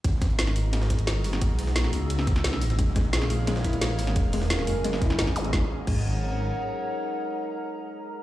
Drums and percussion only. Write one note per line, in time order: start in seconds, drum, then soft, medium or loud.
0.04 kick loud
0.04 closed hi-hat loud
0.04 ride medium
0.22 kick loud
0.22 snare soft
0.22 closed hi-hat medium
0.22 ride medium
0.22 shaker medium
0.30 shaker soft
0.39 snare loud
0.39 closed hi-hat loud
0.39 ride medium
0.47 snare soft
0.47 ride soft
0.56 open hi-hat medium
0.56 ride medium
0.56 shaker medium
0.73 snare soft
0.73 closed hi-hat loud
0.73 ride medium
0.82 snare medium
0.90 kick medium
0.90 snare medium
0.90 closed hi-hat medium
0.90 ride medium
0.90 shaker medium
0.99 closed hi-hat soft
0.99 shaker soft
1.07 snare loud
1.07 closed hi-hat loud
1.07 ride medium
1.24 snare soft
1.24 open hi-hat medium
1.24 ride medium
1.24 shaker medium
1.33 snare soft
1.33 closed hi-hat soft
1.41 kick loud
1.41 closed hi-hat medium
1.41 ride medium
1.59 snare soft
1.59 closed hi-hat medium
1.59 open hi-hat medium
1.59 shaker medium
1.67 snare soft
1.67 shaker soft
1.76 snare loud
1.76 closed hi-hat medium
1.76 ride medium
1.84 snare soft
1.93 open hi-hat medium
1.93 ride medium
1.93 shaker medium
2.10 closed hi-hat medium
2.10 ride medium
2.19 snare soft
2.27 kick loud
2.27 snare soft
2.27 closed hi-hat medium
2.27 ride medium
2.27 shaker medium
2.36 snare soft
2.36 closed hi-hat soft
2.36 shaker soft
2.44 snare loud
2.44 closed hi-hat loud
2.44 ride medium
2.53 snare soft
2.62 open hi-hat medium
2.62 ride medium
2.62 shaker medium
2.70 snare soft
2.70 closed hi-hat soft
2.79 kick loud
2.79 closed hi-hat medium
2.79 ride medium
2.96 kick loud
2.96 snare medium
2.96 closed hi-hat medium
2.96 ride medium
2.96 shaker medium
3.04 shaker soft
3.13 snare loud
3.13 closed hi-hat medium
3.13 ride medium
3.22 snare soft
3.22 ride soft
3.30 open hi-hat medium
3.30 ride medium
3.30 shaker medium
3.47 snare soft
3.47 closed hi-hat medium
3.47 ride medium
3.56 snare medium
3.64 kick medium
3.64 snare medium
3.64 closed hi-hat medium
3.64 ride medium
3.64 shaker medium
3.73 closed hi-hat soft
3.73 shaker soft
3.82 snare loud
3.82 closed hi-hat loud
3.82 ride medium
3.99 snare soft
3.99 open hi-hat medium
3.99 ride medium
3.99 shaker medium
4.07 snare soft
4.07 closed hi-hat soft
4.16 kick loud
4.16 closed hi-hat medium
4.16 ride medium
4.33 snare soft
4.33 closed hi-hat medium
4.33 open hi-hat medium
4.33 shaker medium
4.42 snare soft
4.42 shaker soft
4.50 snare loud
4.50 closed hi-hat medium
4.50 ride medium
4.59 snare soft
4.67 open hi-hat medium
4.67 ride medium
4.67 shaker medium
4.84 closed hi-hat medium
4.84 ride medium
4.93 snare soft
5.02 kick loud
5.02 snare soft
5.02 closed hi-hat medium
5.02 ride medium
5.02 shaker medium
5.10 snare soft
5.10 closed hi-hat soft
5.10 shaker soft
5.19 snare loud
5.19 closed hi-hat medium
5.19 ride medium
5.27 kick medium
5.27 snare soft
5.27 ride soft
5.36 open hi-hat medium
5.36 ride medium
5.36 shaker medium
5.45 closed hi-hat soft
5.53 kick loud
5.53 snare medium
5.87 kick loud
5.87 crash medium